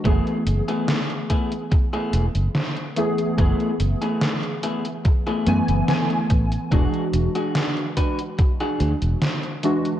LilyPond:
<<
  \new Staff \with { instrumentName = "Clean electric guitar" } { \time 4/4 \key fis \minor \tempo 4 = 72 <a b e' gis'>8 r16 <a b e' gis'>16 r8 <a b e' gis'>16 r8 <a b e' gis'>16 r4. | <a b e' gis'>8 r16 <a b e' gis'>16 r8 <a b e' gis'>16 r8 <a b e' gis'>16 r4. | <d' fis' gis'>8 r16 <d' fis' gis'>16 r8 <d' fis' b'>16 r8 <d' fis' gis'>16 r4. | }
  \new Staff \with { instrumentName = "Synth keys" } { \time 4/4 \key fis \minor <e a b gis'>2.~ <e a b gis'>8 <e a b gis'>8 | <e a b gis'>2~ <e a b gis'>8 <e a b gis''>8 <e a b gis''>4 | <e gis d' fis'>2.~ <e gis d' fis'>8 <e gis d' fis'>8 | }
  \new Staff \with { instrumentName = "Fingered electric bass" } { \clef bass \time 4/4 \key fis \minor fis,,16 r16 fis,,16 r4. r16 e,,16 fis,,16 r4 | fis,,16 r16 fis,,16 r4. r16 fis,16 fis,,16 r8 a,,16 r16 | e,,16 r16 e,,16 r4. r16 d,16 e,,16 r4 | }
  \new DrumStaff \with { instrumentName = "Drums" } \drummode { \time 4/4 <hh bd>16 hh16 hh16 hh16 <hh sn>16 hh16 <hh bd>16 hh16 <hh bd>16 hh16 hh16 hh16 <hh sn>16 hh16 hh16 hh16 | <hh bd>16 hh16 hh16 hh16 <hh sn>16 hh16 hh16 hh16 <hh bd>16 hh16 hh16 hh16 <hh sn>16 hh16 <hh bd>16 hh16 | <hh bd>16 hh16 hh16 hh16 <hh sn>16 hh16 <hh bd>16 hh16 <hh bd>16 hh16 hh16 hh16 <hh sn>16 hh16 hh16 hh16 | }
>>